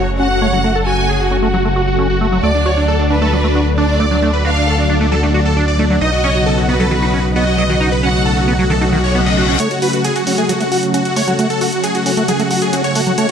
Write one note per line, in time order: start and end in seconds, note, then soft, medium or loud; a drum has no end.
0.00 2.41 F#1 medium
0.00 0.10 C#5 medium
0.08 0.24 C#3 medium
0.08 0.24 F#3 medium
0.08 0.24 A3 medium
0.08 0.24 F#4 medium
0.19 0.28 C#4 medium
0.19 0.28 F#4 medium
0.19 0.78 F#5 medium
0.30 0.46 C#3 medium
0.30 0.46 F#3 medium
0.30 0.46 A3 medium
0.30 0.46 F#4 medium
0.30 0.40 F#4 medium
0.42 0.48 A3 loud
0.42 0.51 C#5 loud
0.53 0.61 C#3 medium
0.53 0.61 F#3 medium
0.53 0.59 F#3 medium
0.53 0.61 A3 medium
0.53 0.61 F#4 medium
0.53 0.62 F#4 medium
0.64 0.73 A3 loud
0.64 0.73 F#4 medium
0.75 0.83 C#3 medium
0.75 0.83 F#3 medium
0.75 0.83 A3 medium
0.75 0.83 F#4 medium
0.75 0.84 A4 medium
0.86 0.94 C#3 medium
0.86 0.94 F#3 medium
0.86 0.94 A3 medium
0.86 0.94 F#4 medium
0.86 0.93 F#4 loud
0.86 0.96 F#4 medium
0.86 1.29 G#5 medium
0.98 1.13 C#3 medium
0.98 1.13 F#3 medium
0.98 1.13 A3 medium
0.98 1.13 F#4 medium
0.98 1.07 F#4 medium
1.09 1.18 G#4 medium
1.20 1.36 C#3 medium
1.20 1.36 F#3 medium
1.20 1.36 A3 medium
1.20 1.29 F#4 medium
1.20 1.36 F#4 medium
1.31 1.37 C#4 medium
1.31 1.40 F#4 medium
1.42 1.50 C#3 medium
1.42 1.50 F#3 medium
1.42 1.48 A3 medium
1.42 1.50 A3 medium
1.42 1.50 F#4 medium
1.42 1.51 F#4 medium
1.54 1.62 C#3 medium
1.54 1.57 F#3 loud
1.54 1.62 F#3 medium
1.54 1.62 A3 medium
1.54 1.62 F#4 medium
1.54 1.63 F#4 medium
1.65 1.81 C#3 medium
1.65 1.81 F#3 medium
1.65 1.68 A3 medium
1.65 1.81 A3 medium
1.65 1.74 F#4 medium
1.65 1.81 F#4 medium
1.76 1.82 F#4 medium
1.76 1.85 F#4 medium
1.87 2.03 C#3 medium
1.87 2.03 F#3 medium
1.87 2.03 A3 medium
1.87 2.03 F#4 medium
1.87 1.96 F#4 medium
1.99 2.08 C#4 medium
1.99 2.07 F#4 medium
2.10 2.25 C#3 medium
2.10 2.25 F#3 medium
2.10 2.25 A3 medium
2.10 2.25 F#4 medium
2.10 2.19 F#4 medium
2.21 2.27 A3 loud
2.21 2.30 F#4 medium
2.32 2.40 C#3 medium
2.32 2.38 F#3 medium
2.32 2.40 F#3 medium
2.32 2.40 A3 medium
2.32 2.40 F#4 medium
2.32 2.41 F#4 medium
2.43 5.99 D2 medium
2.43 2.52 A3 loud
2.43 3.01 D5 medium
2.43 2.52 D5 loud
2.55 2.62 D3 medium
2.55 2.62 F#3 medium
2.55 2.62 A3 medium
2.55 2.63 D4 medium
2.55 2.62 F#4 medium
2.66 2.73 D3 medium
2.66 2.73 F#3 medium
2.66 2.74 A3 medium
2.66 2.72 F#4 loud
2.66 2.73 F#4 medium
2.66 2.75 C#5 medium
2.77 2.92 D3 medium
2.77 2.92 F#3 medium
2.77 2.92 A3 medium
2.77 2.86 D4 medium
2.77 2.92 F#4 medium
2.88 2.97 A4 medium
2.99 3.15 D3 medium
2.99 3.15 F#3 medium
2.99 3.15 A3 medium
2.99 3.08 D4 medium
2.99 3.15 F#4 medium
3.10 3.16 D4 medium
3.10 3.19 D4 medium
3.10 3.69 B4 medium
3.22 3.29 D3 medium
3.22 3.29 F#3 medium
3.22 3.28 A3 medium
3.22 3.29 A3 medium
3.22 3.29 F#4 medium
3.22 3.31 A4 loud
3.33 3.41 D3 medium
3.33 3.41 F#3 medium
3.33 3.36 F#3 loud
3.33 3.41 A3 medium
3.33 3.42 D4 medium
3.33 3.41 F#4 medium
3.44 3.60 D3 medium
3.44 3.60 F#3 medium
3.44 3.48 A3 medium
3.44 3.60 A3 medium
3.44 3.53 D4 medium
3.44 3.60 F#4 medium
3.55 3.64 D4 medium
3.55 3.61 F#4 medium
3.66 3.82 D3 medium
3.66 3.82 F#3 medium
3.66 3.82 A3 medium
3.66 3.82 F#4 medium
3.78 3.87 D4 medium
3.78 4.36 D5 medium
3.89 4.05 D3 medium
3.89 4.05 F#3 medium
3.89 4.04 A3 medium
3.89 3.98 D4 medium
3.89 4.04 F#4 medium
4.00 4.06 A3 loud
4.00 4.09 D5 medium
4.11 4.19 D3 medium
4.11 4.19 F#3 medium
4.11 4.17 F#3 medium
4.11 4.19 A3 medium
4.11 4.20 D4 medium
4.11 4.19 F#4 medium
4.22 4.31 A3 loud
4.22 4.31 D4 medium
4.33 4.41 D3 medium
4.33 4.41 F#3 medium
4.33 4.41 A3 medium
4.33 4.41 F#4 medium
4.33 4.42 B4 medium
4.45 4.53 D3 medium
4.45 4.53 F#3 medium
4.45 4.53 A3 medium
4.45 4.54 D4 medium
4.45 4.53 F#4 medium
4.45 4.51 F#4 loud
4.45 4.87 F5 medium
4.56 4.71 D3 medium
4.56 4.71 F#3 medium
4.56 4.71 A3 medium
4.56 4.65 D4 medium
4.56 4.71 F#4 medium
4.67 4.76 A4 medium
4.78 4.94 D3 medium
4.78 4.94 F#3 medium
4.78 4.94 A3 medium
4.78 4.87 D4 medium
4.78 4.94 F#4 medium
4.89 4.98 D4 medium
4.89 4.96 D4 medium
5.01 5.08 D3 medium
5.01 5.08 F#3 medium
5.01 5.09 A3 medium
5.01 5.07 A3 medium
5.01 5.10 D4 medium
5.01 5.08 F#4 medium
5.12 5.20 D3 medium
5.12 5.15 F#3 loud
5.12 5.20 F#3 medium
5.12 5.20 A3 medium
5.12 5.20 F#4 medium
5.12 5.21 A4 medium
5.23 5.39 D3 medium
5.23 5.39 F#3 medium
5.23 5.39 A3 medium
5.23 5.27 A3 medium
5.23 5.32 D4 medium
5.23 5.39 F#4 medium
5.34 5.43 D4 medium
5.34 5.40 F#4 medium
5.45 5.61 D3 medium
5.45 5.61 F#3 medium
5.45 5.61 A3 medium
5.45 5.61 F#4 medium
5.45 5.54 A4 medium
5.57 5.66 D4 medium
5.68 5.83 D3 medium
5.68 5.83 F#3 medium
5.68 5.83 A3 medium
5.68 5.83 F#4 medium
5.68 5.77 D5 medium
5.79 5.85 A3 loud
5.79 5.88 D4 medium
5.90 5.98 D3 medium
5.90 5.98 F#3 medium
5.90 5.96 F#3 medium
5.90 5.98 A3 medium
5.90 5.99 D4 medium
5.90 5.98 F#4 medium
6.01 9.57 B1 medium
6.01 6.11 D#4 medium
6.01 6.10 D#5 loud
6.01 6.60 D#5 medium
6.12 6.20 C#3 medium
6.12 6.20 F#3 medium
6.12 6.20 B3 medium
6.12 6.20 D#4 medium
6.12 6.22 F#4 medium
6.24 6.32 C#3 medium
6.24 6.32 F#3 medium
6.24 6.32 B3 medium
6.24 6.30 C#4 loud
6.24 6.32 D#4 medium
6.24 6.33 C#5 medium
6.35 6.51 C#3 loud
6.35 6.51 F#3 medium
6.35 6.51 B3 medium
6.35 6.51 D#4 medium
6.35 6.44 F#4 medium
6.46 6.55 A4 medium
6.57 6.73 C#3 medium
6.57 6.73 F#3 medium
6.57 6.73 B3 medium
6.57 6.73 D#4 medium
6.57 6.66 F#4 medium
6.69 6.75 B3 medium
6.69 6.78 F#4 medium
6.69 7.27 B4 medium
6.80 6.88 C#3 medium
6.80 6.88 F#3 medium
6.80 6.86 F#3 medium
6.80 6.88 B3 medium
6.80 6.88 D#4 medium
6.80 6.89 A4 medium
6.91 6.99 C#3 medium
6.91 6.95 D#3 loud
6.91 6.99 F#3 medium
6.91 6.99 B3 medium
6.91 6.99 D#4 medium
6.91 7.00 F#4 medium
7.02 7.18 C#3 medium
7.02 7.18 F#3 medium
7.02 7.18 B3 medium
7.02 7.18 D#4 medium
7.02 7.06 D#4 medium
7.02 7.11 F#4 medium
7.13 7.19 C#4 medium
7.13 7.22 F#4 medium
7.24 7.40 C#3 medium
7.24 7.40 F#3 medium
7.24 7.40 B3 medium
7.24 7.40 D#4 medium
7.36 7.45 B3 medium
7.36 7.45 F#4 medium
7.36 7.94 D#5 medium
7.47 7.63 C#3 medium
7.47 7.62 F#3 medium
7.47 7.63 B3 medium
7.47 7.63 D#4 medium
7.47 7.56 F#4 medium
7.58 7.64 F#3 loud
7.58 7.67 D#5 medium
7.69 7.77 C#3 medium
7.69 7.75 D#3 medium
7.69 7.77 F#3 medium
7.69 7.77 B3 medium
7.69 7.77 D#4 medium
7.69 7.78 F#4 medium
7.81 7.90 D#4 loud
7.81 7.90 F#4 medium
7.92 8.00 C#3 medium
7.92 8.00 F#3 medium
7.92 8.00 A3 medium
7.92 8.00 D#4 medium
7.92 8.01 B4 medium
8.03 8.11 C#3 medium
8.03 8.11 F#3 medium
8.03 8.11 A3 medium
8.03 8.09 C#4 loud
8.03 8.11 D#4 medium
8.03 8.12 F#4 medium
8.03 8.45 F#5 medium
8.14 8.30 C#3 medium
8.14 8.30 F#3 medium
8.14 8.30 A3 loud
8.14 8.30 D#4 medium
8.14 8.23 F#4 medium
8.25 8.34 A4 medium
8.37 8.52 C#3 medium
8.37 8.52 F#3 medium
8.37 8.52 A3 medium
8.37 8.52 D#4 medium
8.37 8.46 F#4 medium
8.48 8.54 B3 medium
8.48 8.57 F#4 medium
8.59 8.67 C#3 medium
8.59 8.67 F#3 medium
8.59 8.65 F#3 medium
8.59 8.67 A3 medium
8.59 8.67 D#4 medium
8.59 8.68 F#4 medium
8.70 8.78 C#3 medium
8.70 8.74 D#3 loud
8.70 8.78 F#3 medium
8.70 8.78 A3 medium
8.70 8.78 D#4 medium
8.70 8.79 A4 medium
8.70 reverse cymbal medium
8.81 8.97 C#3 medium
8.81 8.97 F#3 medium
8.81 8.97 A3 medium
8.81 8.97 D#4 medium
8.81 8.85 D#4 medium
8.81 8.90 F#4 medium
8.92 8.98 D#3 medium
8.92 9.01 F#4 medium
9.04 9.19 C#3 medium
9.04 9.19 F#3 medium
9.04 9.19 A3 medium
9.04 9.19 D#4 medium
9.04 9.13 C#5 medium
9.15 9.21 B3 medium
9.15 9.24 F#4 medium
9.26 9.42 C#3 medium
9.26 9.42 F#3 medium
9.26 9.42 A3 medium
9.26 9.42 D#4 medium
9.26 9.35 D#5 medium
9.37 9.46 F#4 medium
9.48 9.56 C#3 medium
9.48 9.56 F#3 medium
9.48 9.56 A3 medium
9.48 9.57 C#4 medium
9.48 9.56 D#4 medium
9.48 9.57 F#4 medium
9.60 9.69 A3 loud
9.60 9.69 C#5 loud
9.60 closed hi-hat medium
9.71 9.79 C#3 medium
9.71 9.79 F#3 medium
9.71 9.79 A3 medium
9.71 9.79 F#4 medium
9.71 9.80 F#4 medium
9.71 closed hi-hat soft
9.82 9.90 C#3 medium
9.82 9.90 F#3 medium
9.82 9.90 A3 medium
9.82 9.90 F#4 medium
9.82 9.88 F#4 loud
9.82 9.91 B4 medium
9.82 open hi-hat loud
9.93 10.09 C#3 medium
9.93 10.09 F#3 medium
9.93 10.09 A3 medium
9.93 10.09 F#4 medium
9.93 10.02 F#4 medium
9.93 closed hi-hat soft
10.04 10.13 G#4 medium
10.04 closed hi-hat medium
10.16 10.31 C#3 medium
10.16 10.31 F#3 medium
10.16 10.31 A3 medium
10.16 10.31 F#4 medium
10.16 10.25 F#4 medium
10.16 closed hi-hat soft
10.27 10.33 C#4 medium
10.27 10.36 F#4 medium
10.27 open hi-hat medium
10.38 10.46 C#3 medium
10.38 10.46 F#3 medium
10.38 10.46 A3 medium
10.38 10.44 A3 medium
10.38 10.46 F#4 medium
10.38 10.47 G#4 medium
10.38 closed hi-hat soft
10.49 10.57 C#3 medium
10.49 10.53 F#3 loud
10.49 10.57 F#3 medium
10.49 10.57 A3 medium
10.49 10.58 F#4 medium
10.49 10.57 F#4 medium
10.49 closed hi-hat medium
10.60 10.76 C#3 medium
10.60 10.76 F#3 medium
10.60 10.76 A3 medium
10.60 10.64 A3 medium
10.60 10.76 F#4 medium
10.60 10.69 F#4 medium
10.60 closed hi-hat soft
10.72 10.80 F#4 medium
10.72 10.78 F#4 medium
10.72 open hi-hat medium
10.83 10.98 C#3 medium
10.83 10.98 F#3 medium
10.83 10.98 A3 medium
10.83 10.98 F#4 medium
10.83 closed hi-hat soft
10.94 11.03 C#4 medium
10.94 11.03 F#4 medium
10.94 closed hi-hat medium
11.05 11.21 C#3 medium
11.05 11.21 F#3 medium
11.05 11.21 A3 medium
11.05 11.21 F#4 medium
11.05 11.14 F#4 medium
11.05 closed hi-hat soft
11.16 11.22 A3 loud
11.16 11.25 C#5 medium
11.16 open hi-hat loud
11.27 11.35 C#3 medium
11.27 11.35 F#3 medium
11.27 11.34 F#3 medium
11.27 11.35 A3 medium
11.27 11.35 F#4 medium
11.27 11.37 F#4 medium
11.27 closed hi-hat soft
11.39 11.48 A3 loud
11.39 11.48 F#4 medium
11.39 closed hi-hat medium
11.50 11.58 C#3 medium
11.50 11.58 F#3 medium
11.50 11.58 A3 medium
11.50 11.58 F#4 medium
11.50 11.59 A4 medium
11.50 closed hi-hat soft
11.61 11.69 C#3 medium
11.61 11.69 F#3 medium
11.61 11.69 A3 medium
11.61 11.69 F#4 medium
11.61 11.67 F#4 loud
11.61 11.70 F#4 medium
11.61 open hi-hat loud
11.72 11.88 C#3 loud
11.72 11.88 F#3 medium
11.72 11.88 A3 medium
11.72 11.88 F#4 medium
11.72 11.81 F#4 medium
11.72 closed hi-hat soft
11.84 11.93 G#4 medium
11.84 closed hi-hat medium
11.95 12.10 C#3 medium
11.95 12.10 F#3 medium
11.95 12.10 A3 medium
11.95 12.10 F#4 medium
11.95 12.04 F#4 medium
11.95 closed hi-hat soft
12.06 12.12 C#4 medium
12.06 12.15 F#4 medium
12.06 open hi-hat loud
12.17 12.25 C#3 medium
12.17 12.25 F#3 medium
12.17 12.25 A3 medium
12.17 12.23 A3 medium
12.17 12.25 F#4 medium
12.17 12.26 F#4 medium
12.17 closed hi-hat soft
12.28 12.36 C#3 medium
12.28 12.36 F#3 medium
12.28 12.32 F#3 loud
12.28 12.36 A3 medium
12.28 12.36 F#4 medium
12.28 12.37 G#4 loud
12.28 closed hi-hat medium
12.39 12.55 C#3 medium
12.39 12.55 F#3 medium
12.39 12.55 A3 medium
12.39 12.43 A3 medium
12.39 12.55 F#4 medium
12.39 12.48 F#4 medium
12.39 closed hi-hat soft
12.51 12.60 F#4 medium
12.51 12.57 F#4 medium
12.51 open hi-hat loud
12.62 12.77 C#3 medium
12.62 12.77 F#3 medium
12.62 12.77 A3 medium
12.62 12.77 F#4 medium
12.62 12.71 G#4 medium
12.62 closed hi-hat soft
12.73 12.82 C#4 medium
12.73 12.82 F#4 medium
12.73 closed hi-hat medium
12.84 13.00 C#3 medium
12.84 13.00 F#3 medium
12.84 13.00 A3 medium
12.84 13.00 F#4 medium
12.84 12.93 C#5 loud
12.84 closed hi-hat soft
12.95 13.01 A3 loud
12.95 13.04 F#4 medium
12.95 open hi-hat loud
13.07 13.14 C#3 medium
13.07 13.14 F#3 medium
13.07 13.13 F#3 medium
13.07 13.14 A3 medium
13.07 13.14 F#4 medium
13.07 13.16 F#4 medium
13.07 closed hi-hat soft
13.18 13.27 A3 loud
13.18 13.27 C#5 loud
13.18 closed hi-hat medium